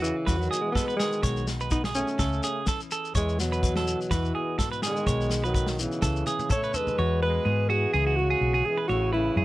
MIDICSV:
0, 0, Header, 1, 8, 480
1, 0, Start_track
1, 0, Key_signature, 4, "major"
1, 0, Tempo, 478469
1, 1237, Time_signature, 4, 2, 24, 8
1, 9479, End_track
2, 0, Start_track
2, 0, Title_t, "Clean electric guitar"
2, 0, Program_c, 0, 27
2, 0, Note_on_c, 0, 66, 58
2, 150, Note_off_c, 0, 66, 0
2, 266, Note_on_c, 0, 71, 72
2, 499, Note_off_c, 0, 71, 0
2, 509, Note_on_c, 0, 68, 66
2, 741, Note_off_c, 0, 68, 0
2, 758, Note_on_c, 0, 69, 71
2, 879, Note_off_c, 0, 69, 0
2, 883, Note_on_c, 0, 71, 61
2, 990, Note_off_c, 0, 71, 0
2, 998, Note_on_c, 0, 68, 65
2, 1226, Note_off_c, 0, 68, 0
2, 1236, Note_on_c, 0, 73, 74
2, 1465, Note_off_c, 0, 73, 0
2, 1614, Note_on_c, 0, 71, 64
2, 1713, Note_off_c, 0, 71, 0
2, 1725, Note_on_c, 0, 71, 64
2, 1845, Note_off_c, 0, 71, 0
2, 1857, Note_on_c, 0, 68, 56
2, 2081, Note_off_c, 0, 68, 0
2, 2200, Note_on_c, 0, 69, 76
2, 2428, Note_off_c, 0, 69, 0
2, 2446, Note_on_c, 0, 68, 68
2, 2671, Note_off_c, 0, 68, 0
2, 2691, Note_on_c, 0, 69, 71
2, 2808, Note_off_c, 0, 69, 0
2, 2930, Note_on_c, 0, 69, 68
2, 3153, Note_off_c, 0, 69, 0
2, 3162, Note_on_c, 0, 73, 73
2, 3389, Note_off_c, 0, 73, 0
2, 3534, Note_on_c, 0, 71, 64
2, 3630, Note_off_c, 0, 71, 0
2, 3642, Note_on_c, 0, 71, 68
2, 3764, Note_off_c, 0, 71, 0
2, 3778, Note_on_c, 0, 69, 61
2, 4002, Note_off_c, 0, 69, 0
2, 4122, Note_on_c, 0, 71, 81
2, 4350, Note_off_c, 0, 71, 0
2, 4363, Note_on_c, 0, 68, 70
2, 4590, Note_off_c, 0, 68, 0
2, 4601, Note_on_c, 0, 69, 74
2, 4724, Note_off_c, 0, 69, 0
2, 4730, Note_on_c, 0, 71, 63
2, 4836, Note_off_c, 0, 71, 0
2, 4845, Note_on_c, 0, 68, 68
2, 5072, Note_off_c, 0, 68, 0
2, 5086, Note_on_c, 0, 73, 75
2, 5312, Note_off_c, 0, 73, 0
2, 5454, Note_on_c, 0, 71, 69
2, 5552, Note_off_c, 0, 71, 0
2, 5564, Note_on_c, 0, 71, 69
2, 5686, Note_off_c, 0, 71, 0
2, 6042, Note_on_c, 0, 69, 73
2, 6271, Note_off_c, 0, 69, 0
2, 6287, Note_on_c, 0, 68, 71
2, 6513, Note_off_c, 0, 68, 0
2, 6529, Note_on_c, 0, 69, 74
2, 6649, Note_off_c, 0, 69, 0
2, 6658, Note_on_c, 0, 71, 63
2, 6760, Note_off_c, 0, 71, 0
2, 6764, Note_on_c, 0, 69, 66
2, 6991, Note_off_c, 0, 69, 0
2, 7009, Note_on_c, 0, 73, 82
2, 7233, Note_off_c, 0, 73, 0
2, 7249, Note_on_c, 0, 71, 79
2, 7473, Note_off_c, 0, 71, 0
2, 7474, Note_on_c, 0, 68, 73
2, 7705, Note_off_c, 0, 68, 0
2, 7721, Note_on_c, 0, 66, 74
2, 7948, Note_off_c, 0, 66, 0
2, 7961, Note_on_c, 0, 68, 84
2, 8083, Note_off_c, 0, 68, 0
2, 8092, Note_on_c, 0, 66, 70
2, 8318, Note_off_c, 0, 66, 0
2, 8330, Note_on_c, 0, 68, 70
2, 8557, Note_off_c, 0, 68, 0
2, 8569, Note_on_c, 0, 68, 72
2, 8796, Note_off_c, 0, 68, 0
2, 8803, Note_on_c, 0, 71, 68
2, 8910, Note_off_c, 0, 71, 0
2, 8922, Note_on_c, 0, 73, 81
2, 9147, Note_off_c, 0, 73, 0
2, 9155, Note_on_c, 0, 71, 79
2, 9383, Note_off_c, 0, 71, 0
2, 9402, Note_on_c, 0, 68, 73
2, 9479, Note_off_c, 0, 68, 0
2, 9479, End_track
3, 0, Start_track
3, 0, Title_t, "Alto saxophone"
3, 0, Program_c, 1, 65
3, 20, Note_on_c, 1, 52, 76
3, 378, Note_on_c, 1, 54, 73
3, 393, Note_off_c, 1, 52, 0
3, 607, Note_off_c, 1, 54, 0
3, 613, Note_on_c, 1, 56, 81
3, 717, Note_off_c, 1, 56, 0
3, 723, Note_on_c, 1, 59, 90
3, 962, Note_off_c, 1, 59, 0
3, 971, Note_on_c, 1, 56, 85
3, 1430, Note_off_c, 1, 56, 0
3, 1723, Note_on_c, 1, 63, 85
3, 1830, Note_off_c, 1, 63, 0
3, 1955, Note_on_c, 1, 61, 88
3, 2638, Note_off_c, 1, 61, 0
3, 3179, Note_on_c, 1, 56, 98
3, 3394, Note_off_c, 1, 56, 0
3, 3409, Note_on_c, 1, 54, 90
3, 4133, Note_on_c, 1, 52, 75
3, 4148, Note_off_c, 1, 54, 0
3, 4608, Note_off_c, 1, 52, 0
3, 4873, Note_on_c, 1, 56, 99
3, 5427, Note_off_c, 1, 56, 0
3, 5465, Note_on_c, 1, 54, 83
3, 5810, Note_on_c, 1, 52, 78
3, 5825, Note_off_c, 1, 54, 0
3, 6526, Note_off_c, 1, 52, 0
3, 6543, Note_on_c, 1, 73, 96
3, 6782, Note_on_c, 1, 71, 92
3, 6797, Note_off_c, 1, 73, 0
3, 7242, Note_off_c, 1, 71, 0
3, 7248, Note_on_c, 1, 71, 97
3, 7716, Note_on_c, 1, 68, 95
3, 7731, Note_off_c, 1, 71, 0
3, 8193, Note_on_c, 1, 66, 99
3, 8208, Note_off_c, 1, 68, 0
3, 8680, Note_on_c, 1, 68, 91
3, 8695, Note_off_c, 1, 66, 0
3, 8900, Note_off_c, 1, 68, 0
3, 8906, Note_on_c, 1, 66, 97
3, 9134, Note_off_c, 1, 66, 0
3, 9164, Note_on_c, 1, 64, 87
3, 9479, Note_off_c, 1, 64, 0
3, 9479, End_track
4, 0, Start_track
4, 0, Title_t, "Nylon-string guitar"
4, 0, Program_c, 2, 24
4, 0, Note_on_c, 2, 52, 55
4, 0, Note_on_c, 2, 59, 53
4, 287, Note_on_c, 2, 66, 57
4, 514, Note_on_c, 2, 47, 58
4, 760, Note_off_c, 2, 59, 0
4, 772, Note_on_c, 2, 59, 49
4, 999, Note_off_c, 2, 66, 0
4, 1011, Note_on_c, 2, 66, 53
4, 1210, Note_off_c, 2, 47, 0
4, 1211, Note_off_c, 2, 52, 0
4, 1218, Note_off_c, 2, 66, 0
4, 1239, Note_on_c, 2, 47, 64
4, 1245, Note_off_c, 2, 59, 0
4, 1246, Note_on_c, 2, 51, 51
4, 1257, Note_on_c, 2, 56, 56
4, 1263, Note_on_c, 2, 63, 56
4, 1270, Note_on_c, 2, 66, 57
4, 1469, Note_off_c, 2, 63, 0
4, 1481, Note_on_c, 2, 63, 51
4, 1719, Note_off_c, 2, 47, 0
4, 1726, Note_on_c, 2, 45, 55
4, 1958, Note_off_c, 2, 45, 0
4, 1962, Note_on_c, 2, 47, 58
4, 2174, Note_off_c, 2, 63, 0
4, 2177, Note_off_c, 2, 51, 0
4, 2182, Note_off_c, 2, 56, 0
4, 2186, Note_off_c, 2, 66, 0
4, 2200, Note_off_c, 2, 47, 0
4, 2204, Note_on_c, 2, 49, 67
4, 2461, Note_on_c, 2, 61, 55
4, 2680, Note_on_c, 2, 52, 51
4, 2682, Note_off_c, 2, 49, 0
4, 3133, Note_off_c, 2, 52, 0
4, 3144, Note_off_c, 2, 61, 0
4, 3161, Note_on_c, 2, 40, 65
4, 3401, Note_on_c, 2, 59, 55
4, 3644, Note_on_c, 2, 52, 58
4, 4131, Note_on_c, 2, 66, 62
4, 4368, Note_on_c, 2, 47, 57
4, 4602, Note_off_c, 2, 40, 0
4, 4615, Note_on_c, 2, 44, 55
4, 4843, Note_off_c, 2, 47, 0
4, 4847, Note_on_c, 2, 45, 54
4, 4848, Note_off_c, 2, 44, 0
4, 5057, Note_off_c, 2, 52, 0
4, 5061, Note_off_c, 2, 66, 0
4, 5082, Note_off_c, 2, 45, 0
4, 5086, Note_on_c, 2, 47, 65
4, 5323, Note_off_c, 2, 59, 0
4, 5334, Note_on_c, 2, 63, 53
4, 5563, Note_off_c, 2, 47, 0
4, 5567, Note_on_c, 2, 45, 58
4, 5805, Note_off_c, 2, 45, 0
4, 5813, Note_on_c, 2, 47, 59
4, 6022, Note_off_c, 2, 63, 0
4, 6048, Note_off_c, 2, 47, 0
4, 6055, Note_on_c, 2, 49, 67
4, 6300, Note_on_c, 2, 61, 58
4, 6518, Note_off_c, 2, 49, 0
4, 6530, Note_on_c, 2, 49, 56
4, 6761, Note_on_c, 2, 51, 58
4, 6766, Note_off_c, 2, 49, 0
4, 6984, Note_off_c, 2, 61, 0
4, 7002, Note_off_c, 2, 51, 0
4, 7006, Note_on_c, 2, 40, 72
4, 7012, Note_on_c, 2, 66, 66
4, 7248, Note_on_c, 2, 56, 57
4, 7478, Note_on_c, 2, 59, 57
4, 7714, Note_off_c, 2, 66, 0
4, 7726, Note_on_c, 2, 66, 72
4, 7937, Note_off_c, 2, 56, 0
4, 7937, Note_off_c, 2, 66, 0
4, 7959, Note_off_c, 2, 59, 0
4, 7961, Note_on_c, 2, 49, 75
4, 7962, Note_off_c, 2, 40, 0
4, 7970, Note_on_c, 2, 52, 60
4, 7975, Note_on_c, 2, 56, 56
4, 7981, Note_on_c, 2, 61, 57
4, 7987, Note_on_c, 2, 64, 68
4, 8203, Note_off_c, 2, 56, 0
4, 8215, Note_on_c, 2, 56, 59
4, 8432, Note_off_c, 2, 49, 0
4, 8445, Note_on_c, 2, 49, 64
4, 8677, Note_off_c, 2, 49, 0
4, 8681, Note_on_c, 2, 47, 57
4, 8896, Note_off_c, 2, 52, 0
4, 8899, Note_off_c, 2, 56, 0
4, 8901, Note_off_c, 2, 61, 0
4, 8911, Note_off_c, 2, 47, 0
4, 8915, Note_on_c, 2, 45, 75
4, 8922, Note_on_c, 2, 52, 62
4, 8931, Note_off_c, 2, 64, 0
4, 8931, Note_on_c, 2, 57, 60
4, 8937, Note_on_c, 2, 61, 60
4, 8942, Note_on_c, 2, 64, 74
4, 9160, Note_off_c, 2, 57, 0
4, 9172, Note_on_c, 2, 57, 59
4, 9399, Note_on_c, 2, 44, 65
4, 9479, Note_off_c, 2, 44, 0
4, 9479, Note_off_c, 2, 45, 0
4, 9479, Note_off_c, 2, 52, 0
4, 9479, Note_off_c, 2, 57, 0
4, 9479, Note_off_c, 2, 61, 0
4, 9479, Note_off_c, 2, 64, 0
4, 9479, End_track
5, 0, Start_track
5, 0, Title_t, "Trombone"
5, 0, Program_c, 3, 57
5, 30, Note_on_c, 3, 49, 61
5, 398, Note_on_c, 3, 51, 59
5, 413, Note_off_c, 3, 49, 0
5, 632, Note_off_c, 3, 51, 0
5, 638, Note_on_c, 3, 52, 68
5, 745, Note_off_c, 3, 52, 0
5, 763, Note_on_c, 3, 56, 74
5, 984, Note_off_c, 3, 56, 0
5, 1007, Note_on_c, 3, 51, 70
5, 1449, Note_off_c, 3, 51, 0
5, 1731, Note_on_c, 3, 59, 66
5, 1836, Note_off_c, 3, 59, 0
5, 1969, Note_on_c, 3, 57, 67
5, 2645, Note_off_c, 3, 57, 0
5, 3183, Note_on_c, 3, 52, 72
5, 3396, Note_off_c, 3, 52, 0
5, 3426, Note_on_c, 3, 47, 84
5, 4130, Note_off_c, 3, 47, 0
5, 4130, Note_on_c, 3, 47, 67
5, 4606, Note_off_c, 3, 47, 0
5, 4886, Note_on_c, 3, 51, 79
5, 5434, Note_off_c, 3, 51, 0
5, 5484, Note_on_c, 3, 51, 74
5, 5831, Note_on_c, 3, 49, 61
5, 5846, Note_off_c, 3, 51, 0
5, 6537, Note_off_c, 3, 49, 0
5, 6575, Note_on_c, 3, 57, 72
5, 6814, Note_on_c, 3, 56, 79
5, 6829, Note_off_c, 3, 57, 0
5, 7268, Note_off_c, 3, 56, 0
5, 7294, Note_on_c, 3, 56, 89
5, 7757, Note_on_c, 3, 52, 75
5, 7772, Note_off_c, 3, 56, 0
5, 8245, Note_on_c, 3, 49, 78
5, 8260, Note_off_c, 3, 52, 0
5, 8709, Note_on_c, 3, 52, 74
5, 8724, Note_off_c, 3, 49, 0
5, 8933, Note_off_c, 3, 52, 0
5, 8942, Note_on_c, 3, 49, 76
5, 9153, Note_off_c, 3, 49, 0
5, 9184, Note_on_c, 3, 49, 79
5, 9479, Note_off_c, 3, 49, 0
5, 9479, End_track
6, 0, Start_track
6, 0, Title_t, "Fingered electric bass"
6, 0, Program_c, 4, 33
6, 0, Note_on_c, 4, 40, 72
6, 107, Note_off_c, 4, 40, 0
6, 272, Note_on_c, 4, 40, 79
6, 472, Note_off_c, 4, 40, 0
6, 1236, Note_on_c, 4, 35, 74
6, 2031, Note_off_c, 4, 35, 0
6, 2201, Note_on_c, 4, 37, 80
6, 2398, Note_off_c, 4, 37, 0
6, 3159, Note_on_c, 4, 40, 78
6, 3954, Note_off_c, 4, 40, 0
6, 4123, Note_on_c, 4, 40, 82
6, 4321, Note_off_c, 4, 40, 0
6, 5083, Note_on_c, 4, 35, 79
6, 5877, Note_off_c, 4, 35, 0
6, 6042, Note_on_c, 4, 37, 82
6, 6241, Note_off_c, 4, 37, 0
6, 7007, Note_on_c, 4, 40, 85
6, 7401, Note_off_c, 4, 40, 0
6, 7478, Note_on_c, 4, 44, 88
6, 7876, Note_off_c, 4, 44, 0
6, 7964, Note_on_c, 4, 37, 95
6, 8358, Note_off_c, 4, 37, 0
6, 8438, Note_on_c, 4, 35, 85
6, 8636, Note_off_c, 4, 35, 0
6, 8921, Note_on_c, 4, 33, 91
6, 9315, Note_off_c, 4, 33, 0
6, 9390, Note_on_c, 4, 42, 90
6, 9479, Note_off_c, 4, 42, 0
6, 9479, End_track
7, 0, Start_track
7, 0, Title_t, "Shekere"
7, 42, Note_on_c, 9, 82, 62
7, 143, Note_off_c, 9, 82, 0
7, 280, Note_on_c, 9, 82, 76
7, 381, Note_off_c, 9, 82, 0
7, 422, Note_on_c, 9, 82, 22
7, 523, Note_off_c, 9, 82, 0
7, 531, Note_on_c, 9, 82, 60
7, 631, Note_off_c, 9, 82, 0
7, 770, Note_on_c, 9, 82, 79
7, 871, Note_off_c, 9, 82, 0
7, 895, Note_on_c, 9, 82, 23
7, 996, Note_off_c, 9, 82, 0
7, 1002, Note_on_c, 9, 82, 65
7, 1103, Note_off_c, 9, 82, 0
7, 1131, Note_on_c, 9, 82, 23
7, 1231, Note_off_c, 9, 82, 0
7, 1243, Note_on_c, 9, 82, 81
7, 1343, Note_off_c, 9, 82, 0
7, 1371, Note_on_c, 9, 82, 24
7, 1471, Note_off_c, 9, 82, 0
7, 1478, Note_on_c, 9, 82, 63
7, 1578, Note_off_c, 9, 82, 0
7, 1611, Note_on_c, 9, 82, 26
7, 1712, Note_off_c, 9, 82, 0
7, 1713, Note_on_c, 9, 82, 76
7, 1814, Note_off_c, 9, 82, 0
7, 1956, Note_on_c, 9, 82, 68
7, 2056, Note_off_c, 9, 82, 0
7, 2085, Note_on_c, 9, 82, 25
7, 2186, Note_off_c, 9, 82, 0
7, 2199, Note_on_c, 9, 82, 82
7, 2299, Note_off_c, 9, 82, 0
7, 2336, Note_on_c, 9, 82, 22
7, 2436, Note_off_c, 9, 82, 0
7, 2441, Note_on_c, 9, 82, 65
7, 2541, Note_off_c, 9, 82, 0
7, 2676, Note_on_c, 9, 82, 81
7, 2776, Note_off_c, 9, 82, 0
7, 2812, Note_on_c, 9, 82, 24
7, 2913, Note_off_c, 9, 82, 0
7, 2920, Note_on_c, 9, 82, 66
7, 3020, Note_off_c, 9, 82, 0
7, 3060, Note_on_c, 9, 82, 23
7, 3160, Note_off_c, 9, 82, 0
7, 3163, Note_on_c, 9, 82, 82
7, 3263, Note_off_c, 9, 82, 0
7, 3301, Note_on_c, 9, 82, 24
7, 3401, Note_off_c, 9, 82, 0
7, 3410, Note_on_c, 9, 82, 66
7, 3510, Note_off_c, 9, 82, 0
7, 3541, Note_on_c, 9, 82, 25
7, 3641, Note_off_c, 9, 82, 0
7, 3649, Note_on_c, 9, 82, 82
7, 3749, Note_off_c, 9, 82, 0
7, 3887, Note_on_c, 9, 82, 70
7, 3988, Note_off_c, 9, 82, 0
7, 4025, Note_on_c, 9, 82, 27
7, 4125, Note_off_c, 9, 82, 0
7, 4128, Note_on_c, 9, 82, 86
7, 4229, Note_off_c, 9, 82, 0
7, 4262, Note_on_c, 9, 82, 26
7, 4363, Note_off_c, 9, 82, 0
7, 4613, Note_on_c, 9, 82, 90
7, 4713, Note_off_c, 9, 82, 0
7, 4740, Note_on_c, 9, 82, 27
7, 4841, Note_off_c, 9, 82, 0
7, 4850, Note_on_c, 9, 82, 70
7, 4950, Note_off_c, 9, 82, 0
7, 4981, Note_on_c, 9, 82, 26
7, 5082, Note_off_c, 9, 82, 0
7, 5094, Note_on_c, 9, 82, 90
7, 5195, Note_off_c, 9, 82, 0
7, 5227, Note_on_c, 9, 82, 26
7, 5327, Note_off_c, 9, 82, 0
7, 5333, Note_on_c, 9, 82, 69
7, 5433, Note_off_c, 9, 82, 0
7, 5468, Note_on_c, 9, 82, 26
7, 5568, Note_off_c, 9, 82, 0
7, 5574, Note_on_c, 9, 82, 81
7, 5674, Note_off_c, 9, 82, 0
7, 5703, Note_on_c, 9, 82, 24
7, 5803, Note_off_c, 9, 82, 0
7, 5811, Note_on_c, 9, 82, 68
7, 5912, Note_off_c, 9, 82, 0
7, 5938, Note_on_c, 9, 82, 25
7, 6038, Note_off_c, 9, 82, 0
7, 6043, Note_on_c, 9, 82, 81
7, 6144, Note_off_c, 9, 82, 0
7, 6183, Note_on_c, 9, 82, 21
7, 6283, Note_off_c, 9, 82, 0
7, 6288, Note_on_c, 9, 82, 63
7, 6388, Note_off_c, 9, 82, 0
7, 6417, Note_on_c, 9, 82, 22
7, 6517, Note_off_c, 9, 82, 0
7, 6524, Note_on_c, 9, 82, 77
7, 6624, Note_off_c, 9, 82, 0
7, 6657, Note_on_c, 9, 82, 21
7, 6757, Note_off_c, 9, 82, 0
7, 6762, Note_on_c, 9, 82, 59
7, 6862, Note_off_c, 9, 82, 0
7, 6896, Note_on_c, 9, 82, 22
7, 6997, Note_off_c, 9, 82, 0
7, 9479, End_track
8, 0, Start_track
8, 0, Title_t, "Drums"
8, 272, Note_on_c, 9, 38, 59
8, 274, Note_on_c, 9, 36, 75
8, 372, Note_off_c, 9, 38, 0
8, 375, Note_off_c, 9, 36, 0
8, 756, Note_on_c, 9, 36, 76
8, 760, Note_on_c, 9, 38, 64
8, 857, Note_off_c, 9, 36, 0
8, 860, Note_off_c, 9, 38, 0
8, 1000, Note_on_c, 9, 38, 52
8, 1100, Note_off_c, 9, 38, 0
8, 1238, Note_on_c, 9, 36, 85
8, 1238, Note_on_c, 9, 38, 24
8, 1338, Note_off_c, 9, 36, 0
8, 1338, Note_off_c, 9, 38, 0
8, 1479, Note_on_c, 9, 38, 59
8, 1579, Note_off_c, 9, 38, 0
8, 1718, Note_on_c, 9, 36, 75
8, 1818, Note_off_c, 9, 36, 0
8, 1846, Note_on_c, 9, 38, 61
8, 1947, Note_off_c, 9, 38, 0
8, 2197, Note_on_c, 9, 38, 62
8, 2199, Note_on_c, 9, 36, 76
8, 2297, Note_off_c, 9, 38, 0
8, 2299, Note_off_c, 9, 36, 0
8, 2673, Note_on_c, 9, 38, 63
8, 2679, Note_on_c, 9, 36, 79
8, 2773, Note_off_c, 9, 38, 0
8, 2779, Note_off_c, 9, 36, 0
8, 3161, Note_on_c, 9, 36, 80
8, 3261, Note_off_c, 9, 36, 0
8, 3399, Note_on_c, 9, 38, 56
8, 3499, Note_off_c, 9, 38, 0
8, 3642, Note_on_c, 9, 36, 72
8, 3742, Note_off_c, 9, 36, 0
8, 3768, Note_on_c, 9, 38, 59
8, 3868, Note_off_c, 9, 38, 0
8, 4120, Note_on_c, 9, 38, 60
8, 4123, Note_on_c, 9, 36, 78
8, 4220, Note_off_c, 9, 38, 0
8, 4223, Note_off_c, 9, 36, 0
8, 4600, Note_on_c, 9, 38, 60
8, 4603, Note_on_c, 9, 36, 73
8, 4701, Note_off_c, 9, 38, 0
8, 4703, Note_off_c, 9, 36, 0
8, 4837, Note_on_c, 9, 38, 57
8, 4937, Note_off_c, 9, 38, 0
8, 5076, Note_on_c, 9, 38, 22
8, 5083, Note_on_c, 9, 36, 80
8, 5176, Note_off_c, 9, 38, 0
8, 5183, Note_off_c, 9, 36, 0
8, 5313, Note_on_c, 9, 38, 57
8, 5413, Note_off_c, 9, 38, 0
8, 5562, Note_on_c, 9, 36, 74
8, 5662, Note_off_c, 9, 36, 0
8, 5683, Note_on_c, 9, 38, 59
8, 5784, Note_off_c, 9, 38, 0
8, 6038, Note_on_c, 9, 38, 39
8, 6043, Note_on_c, 9, 36, 77
8, 6138, Note_off_c, 9, 38, 0
8, 6143, Note_off_c, 9, 36, 0
8, 6280, Note_on_c, 9, 48, 45
8, 6380, Note_off_c, 9, 48, 0
8, 6413, Note_on_c, 9, 48, 41
8, 6514, Note_off_c, 9, 48, 0
8, 6515, Note_on_c, 9, 47, 54
8, 6521, Note_on_c, 9, 36, 78
8, 6615, Note_off_c, 9, 47, 0
8, 6622, Note_off_c, 9, 36, 0
8, 6760, Note_on_c, 9, 43, 55
8, 6860, Note_off_c, 9, 43, 0
8, 6892, Note_on_c, 9, 43, 57
8, 6992, Note_off_c, 9, 43, 0
8, 9479, End_track
0, 0, End_of_file